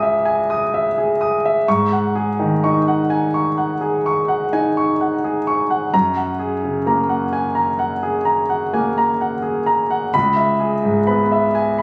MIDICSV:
0, 0, Header, 1, 2, 480
1, 0, Start_track
1, 0, Key_signature, 4, "minor"
1, 0, Tempo, 950872
1, 839, Time_signature, 9, 3, 24, 8
1, 2759, Tempo, 934579
1, 6024, End_track
2, 0, Start_track
2, 0, Title_t, "Grand piano"
2, 0, Program_c, 0, 0
2, 0, Control_c, 0, 64, 127
2, 0, Note_on_c, 0, 37, 58
2, 0, Note_on_c, 0, 44, 49
2, 0, Note_on_c, 0, 68, 51
2, 0, Note_on_c, 0, 76, 51
2, 0, Note_on_c, 0, 80, 55
2, 0, Note_on_c, 0, 87, 53
2, 13, Note_off_c, 0, 76, 0
2, 13, Note_on_c, 0, 76, 48
2, 77, Note_off_c, 0, 87, 0
2, 128, Note_off_c, 0, 80, 0
2, 128, Note_on_c, 0, 80, 50
2, 199, Note_off_c, 0, 76, 0
2, 252, Note_on_c, 0, 87, 52
2, 316, Note_off_c, 0, 80, 0
2, 374, Note_on_c, 0, 76, 47
2, 438, Note_off_c, 0, 87, 0
2, 494, Note_off_c, 0, 68, 0
2, 494, Note_on_c, 0, 68, 43
2, 559, Note_off_c, 0, 76, 0
2, 610, Note_on_c, 0, 87, 51
2, 679, Note_off_c, 0, 68, 0
2, 734, Note_on_c, 0, 76, 54
2, 797, Note_off_c, 0, 87, 0
2, 823, Note_off_c, 0, 37, 0
2, 847, Note_off_c, 0, 76, 0
2, 848, Control_c, 0, 64, 0
2, 849, Note_off_c, 0, 44, 0
2, 849, Note_on_c, 0, 44, 57
2, 850, Note_on_c, 0, 85, 68
2, 927, Control_c, 0, 64, 127
2, 971, Note_on_c, 0, 78, 52
2, 1036, Note_off_c, 0, 85, 0
2, 1087, Note_on_c, 0, 68, 55
2, 1157, Note_off_c, 0, 78, 0
2, 1209, Note_on_c, 0, 51, 47
2, 1275, Note_off_c, 0, 68, 0
2, 1332, Note_on_c, 0, 63, 49
2, 1332, Note_on_c, 0, 85, 53
2, 1396, Note_off_c, 0, 51, 0
2, 1452, Note_on_c, 0, 78, 53
2, 1518, Note_off_c, 0, 63, 0
2, 1518, Note_off_c, 0, 85, 0
2, 1565, Note_on_c, 0, 80, 54
2, 1639, Note_off_c, 0, 78, 0
2, 1687, Note_on_c, 0, 85, 48
2, 1756, Note_off_c, 0, 80, 0
2, 1805, Note_on_c, 0, 78, 46
2, 1877, Note_off_c, 0, 85, 0
2, 1923, Note_on_c, 0, 68, 49
2, 1996, Note_off_c, 0, 78, 0
2, 2049, Note_on_c, 0, 85, 51
2, 2116, Note_off_c, 0, 68, 0
2, 2162, Note_on_c, 0, 78, 50
2, 2239, Note_off_c, 0, 85, 0
2, 2286, Note_on_c, 0, 63, 46
2, 2287, Note_on_c, 0, 80, 55
2, 2355, Note_off_c, 0, 78, 0
2, 2409, Note_on_c, 0, 85, 49
2, 2476, Note_off_c, 0, 63, 0
2, 2477, Note_off_c, 0, 80, 0
2, 2528, Note_on_c, 0, 78, 46
2, 2597, Note_off_c, 0, 85, 0
2, 2647, Note_on_c, 0, 68, 46
2, 2716, Note_off_c, 0, 78, 0
2, 2763, Note_on_c, 0, 85, 51
2, 2836, Note_off_c, 0, 68, 0
2, 2882, Note_on_c, 0, 78, 52
2, 2954, Note_off_c, 0, 85, 0
2, 2985, Note_off_c, 0, 44, 0
2, 3000, Note_on_c, 0, 42, 57
2, 3001, Note_off_c, 0, 78, 0
2, 3001, Note_on_c, 0, 82, 67
2, 3008, Control_c, 0, 64, 0
2, 3093, Control_c, 0, 64, 127
2, 3117, Note_on_c, 0, 78, 53
2, 3189, Note_off_c, 0, 82, 0
2, 3235, Note_on_c, 0, 68, 51
2, 3305, Note_off_c, 0, 78, 0
2, 3360, Note_on_c, 0, 49, 48
2, 3423, Note_off_c, 0, 68, 0
2, 3478, Note_on_c, 0, 58, 49
2, 3481, Note_on_c, 0, 82, 50
2, 3546, Note_off_c, 0, 49, 0
2, 3594, Note_on_c, 0, 78, 50
2, 3665, Note_off_c, 0, 58, 0
2, 3667, Note_off_c, 0, 82, 0
2, 3715, Note_on_c, 0, 80, 54
2, 3784, Note_off_c, 0, 78, 0
2, 3830, Note_on_c, 0, 82, 48
2, 3905, Note_off_c, 0, 80, 0
2, 3952, Note_on_c, 0, 78, 51
2, 4023, Note_off_c, 0, 82, 0
2, 4075, Note_on_c, 0, 68, 52
2, 4144, Note_off_c, 0, 78, 0
2, 4190, Note_on_c, 0, 82, 51
2, 4266, Note_off_c, 0, 68, 0
2, 4315, Note_on_c, 0, 78, 49
2, 4385, Note_off_c, 0, 82, 0
2, 4438, Note_on_c, 0, 58, 45
2, 4439, Note_on_c, 0, 80, 55
2, 4509, Note_off_c, 0, 78, 0
2, 4563, Note_on_c, 0, 82, 54
2, 4630, Note_off_c, 0, 58, 0
2, 4631, Note_off_c, 0, 80, 0
2, 4682, Note_on_c, 0, 78, 50
2, 4753, Note_off_c, 0, 82, 0
2, 4791, Note_on_c, 0, 68, 46
2, 4872, Note_off_c, 0, 78, 0
2, 4915, Note_on_c, 0, 82, 56
2, 4987, Note_off_c, 0, 68, 0
2, 5039, Note_on_c, 0, 78, 55
2, 5110, Note_off_c, 0, 82, 0
2, 5139, Note_off_c, 0, 42, 0
2, 5158, Note_on_c, 0, 83, 73
2, 5160, Note_off_c, 0, 78, 0
2, 5162, Note_on_c, 0, 37, 57
2, 5168, Control_c, 0, 64, 0
2, 5244, Control_c, 0, 64, 127
2, 5275, Note_on_c, 0, 76, 52
2, 5352, Note_off_c, 0, 83, 0
2, 5395, Note_on_c, 0, 68, 55
2, 5471, Note_off_c, 0, 76, 0
2, 5517, Note_on_c, 0, 44, 49
2, 5591, Note_off_c, 0, 68, 0
2, 5638, Note_on_c, 0, 59, 49
2, 5638, Note_on_c, 0, 83, 55
2, 5712, Note_off_c, 0, 44, 0
2, 5765, Note_on_c, 0, 76, 51
2, 5832, Note_off_c, 0, 59, 0
2, 5832, Note_off_c, 0, 83, 0
2, 5883, Note_on_c, 0, 80, 55
2, 5956, Note_off_c, 0, 76, 0
2, 6004, Note_on_c, 0, 83, 49
2, 6024, Note_off_c, 0, 37, 0
2, 6024, Note_off_c, 0, 80, 0
2, 6024, Note_off_c, 0, 83, 0
2, 6024, End_track
0, 0, End_of_file